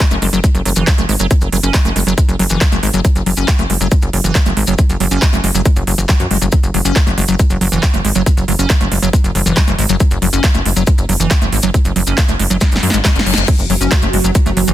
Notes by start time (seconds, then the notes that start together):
0.00 F#3, kick, clap, closed hi-hat
0.11 F#1 A3, closed hi-hat, maracas
0.22 F#1 G#3, open hi-hat
0.33 F#1 F#3, closed hi-hat, maracas
0.44 G#3, kick, closed hi-hat, maracas
0.55 F#1, closed hi-hat, maracas
0.65 F#1 F#3, open hi-hat
0.76 F#1 E3, closed hi-hat, maracas
0.87 F#3, kick, clap, closed hi-hat, maracas
0.98 F#1 A3, closed hi-hat, maracas
1.09 G#1 G#3, open hi-hat
1.19 F#1 F#3, closed hi-hat, maracas
1.31 F#3, kick, closed hi-hat, maracas
1.41 F#1, closed hi-hat, maracas
1.52 F#1 F#3, open hi-hat
1.63 F#1 C#4, closed hi-hat, maracas
1.74 F#3, kick, clap, closed hi-hat, maracas
1.85 F#1 A3, closed hi-hat, maracas
1.96 F#1 G#3, open hi-hat
2.07 F#1 F#3, closed hi-hat, maracas
2.18 G#3, kick, closed hi-hat, maracas
2.29 F#1, closed hi-hat, maracas
2.39 F#1 F#3, open hi-hat
2.50 F#1 E3, closed hi-hat, maracas
2.61 F#3, kick, clap, closed hi-hat, maracas
2.72 F#1 A3, closed hi-hat, maracas
2.83 G#1 G#3, open hi-hat
2.94 F#1 F#3, closed hi-hat, maracas
3.05 F#3, kick, closed hi-hat, maracas
3.15 F#1, closed hi-hat, maracas
3.26 F#1 F#3, open hi-hat
3.37 F#1 C#4, closed hi-hat, maracas
3.48 F#3, kick, clap, closed hi-hat, maracas
3.59 F#1 A3, closed hi-hat, maracas
3.70 F#1 G#3, open hi-hat
3.81 F#1 F#3, closed hi-hat, maracas
3.91 G#3, kick, closed hi-hat, maracas
4.02 F#1, closed hi-hat, maracas
4.13 F#1 F#3, open hi-hat
4.24 F#1 E3, closed hi-hat, maracas
4.35 F#3, kick, clap, closed hi-hat, maracas
4.46 F#1 A3, closed hi-hat, maracas
4.57 G#1 G#3, open hi-hat
4.67 F#1 F#3, closed hi-hat, maracas
4.78 F#3, kick, closed hi-hat, maracas
4.89 F#1, closed hi-hat, maracas
5.00 F#1 F#3, open hi-hat
5.11 F#1 C#4, closed hi-hat, maracas
5.22 F#3, kick, clap, closed hi-hat, maracas
5.33 F#1 A3, closed hi-hat, maracas
5.44 F#1 G#3, open hi-hat
5.55 F#1 F#3, closed hi-hat, maracas
5.65 G#3, kick, closed hi-hat, maracas
5.76 F#1, closed hi-hat, maracas
5.87 F#1 F#3, open hi-hat
5.98 F#1 E3, closed hi-hat, maracas
6.09 F#3, kick, clap, closed hi-hat, maracas
6.20 F#2 E3, closed hi-hat, maracas
6.31 F#1 G#3, open hi-hat
6.42 F#1 F#3, maracas
6.52 F#3, kick, closed hi-hat, maracas
6.63 F#1, closed hi-hat, maracas
6.74 F#1 F#3, open hi-hat
6.85 F#1 C#4, closed hi-hat, maracas
6.95 F#3, kick, clap, closed hi-hat, maracas
7.07 F#1 A3, closed hi-hat, maracas
7.18 F#1 G#3, open hi-hat
7.28 F#1 F#3, closed hi-hat, maracas
7.39 G#3, kick, closed hi-hat, maracas
7.50 F#1, closed hi-hat, maracas
7.61 F#1 F#3, open hi-hat
7.72 F#1 E3, closed hi-hat, maracas
7.83 F#3, kick, clap, closed hi-hat, maracas
7.94 F#1 A3, closed hi-hat, maracas
8.05 G#1 G#3, open hi-hat
8.15 F#1 F#3, closed hi-hat, maracas
8.26 F#3, kick, closed hi-hat, maracas
8.37 F#1, closed hi-hat, maracas
8.48 F#1 F#3, open hi-hat
8.59 F#1 C#4, closed hi-hat, maracas
8.70 F#3, kick, clap, closed hi-hat, maracas
8.80 F#1 A3, closed hi-hat, maracas
8.92 F#1 G#3, open hi-hat
9.02 F#1 F#3, closed hi-hat, maracas
9.13 G#3, kick, closed hi-hat, maracas
9.24 F#1, closed hi-hat, maracas
9.35 F#1 F#3, open hi-hat
9.46 F#1 E3, closed hi-hat, maracas
9.56 F#3, kick, clap, closed hi-hat, maracas
9.67 F#1 A3, closed hi-hat, maracas
9.79 G#1 G#3, open hi-hat
9.89 F#1 F#3, closed hi-hat, maracas
10.00 F#3, kick, closed hi-hat, maracas
10.11 F#1, closed hi-hat, maracas
10.22 F#1 F#3, open hi-hat
10.33 F#1 C#4, closed hi-hat, maracas
10.44 F#3, kick, clap, closed hi-hat, maracas
10.54 F#1 A3, closed hi-hat, maracas
10.65 F#1 G#3, open hi-hat
10.76 F#1 F#3, closed hi-hat, maracas
10.87 G#3, kick, closed hi-hat, maracas
10.98 F#1, closed hi-hat, maracas
11.09 F#1 F#3, open hi-hat
11.20 F#1 E3, maracas
11.31 F#3, kick, clap, closed hi-hat, maracas
11.42 F#1 A3, closed hi-hat, maracas
11.52 G#1 G#3, open hi-hat
11.63 F#1 F#3, closed hi-hat, maracas
11.74 F#3, kick, closed hi-hat, maracas
11.85 F#1, closed hi-hat, maracas
11.96 F#1 F#3, open hi-hat
12.07 F#1 C#4, closed hi-hat, maracas
12.18 F#3, kick, clap, closed hi-hat, maracas
12.28 F#1 A3, closed hi-hat, maracas
12.39 F#1 G#3, open hi-hat
12.50 F#1 F#3, closed hi-hat, maracas
12.61 G#3, kick, snare, closed hi-hat, reverse cymbal, maracas
12.71 F#1, closed hi-hat, maracas
12.76 snare
12.83 F#2 F#3, open hi-hat
12.90 G#1 G#3, snare, closed hi-hat, maracas
13.05 G#3, kick, snare, clap, closed hi-hat, maracas
13.15 F#1 C#4, snare, closed hi-hat, maracas
13.26 F#1 F#3, open hi-hat
13.34 F#1 G#3, snare, closed hi-hat, maracas
13.48 F#3 F#4, kick, closed hi-hat, crash, maracas
13.59 F#1, closed hi-hat, maracas
13.70 F#1 F#3, open hi-hat
13.81 F#1 C#4, closed hi-hat, maracas
13.91 F#3, kick, clap, closed hi-hat, maracas
14.02 F#1 A3, closed hi-hat, maracas
14.13 F#1 G#3, open hi-hat
14.24 F#1 F#3, closed hi-hat, maracas
14.35 G#3, kick, closed hi-hat, maracas
14.46 F#1 A3, closed hi-hat, maracas
14.57 F#1 F#3, open hi-hat
14.68 F#1 E3, closed hi-hat, maracas